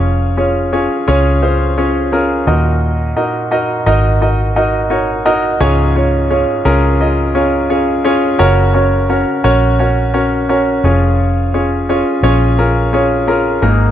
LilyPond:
<<
  \new Staff \with { instrumentName = "Grand piano" } { \time 4/4 \key des \major \tempo 4 = 86 <des' f' aes' des''>8 <des' f' aes' des''>8 <des' f' aes' des''>8 <des' f' aes' des''>8 <des' f' aes' c''>8 <des' f' aes' des''>8 <des' f' aes' bes'>8 <ees' ges' bes' ees''>8~ | <ees' ges' bes' ees''>8 <ees' ges' bes' ees''>8 <ees' ges' bes' ees''>8 <ees' ges' bes' ees''>8 <ees' ges' bes' ees''>8 <ees' ges' bes' ees''>8 <ees' ges' bes' des''>8 <ees' ges' bes' ees''>8 | <des' f' aes' des''>8 <des' f' aes' des''>8 <des' f' aes' des''>8 <des' f' aes' bes'>8 <des' f' aes' ees''>8 <des' f' aes' des''>8 <des' f' aes' des''>8 <des' f' aes' des''>8 | <des' ges' bes' des''>8 <des' ges' bes' des''>8 <des' ges' bes' des''>8 <des' ges' bes' des''>8 <des' ges' bes' des''>8 <des' ges' bes' des''>8 <des' ges' bes' des''>8 <des' f' aes' des''>8~ |
<des' f' aes' des''>8 <des' f' aes' des''>8 <des' f' aes' des''>8 <des' f' aes' des''>8 <des' f' aes' bes'>8 <des' f' aes' des''>8 <des' f' aes' bes'>8 <bes ees' aes' bes'>8 | }
  \new Staff \with { instrumentName = "Grand piano" } { \clef bass \time 4/4 \key des \major f4 r2 r8 bes,8~ | bes,4 r2. | aes,4. r2 r8 | des4. r2 f8~ |
f4 r2 r8 <aes, ees>8 | }
  \new Staff \with { instrumentName = "Fingered electric bass" } { \clef bass \time 4/4 \key des \major f,,4~ f,,16 r16 des,2 ees,8~ | ees,8 r4 aes,,2~ aes,,8 | des,4~ des,16 r16 des,2~ des,8 | ges,,4~ ges,,16 r16 bes,,2 f,,8~ |
f,,4~ f,,16 r16 bes,,2 aes,,8 | }
>>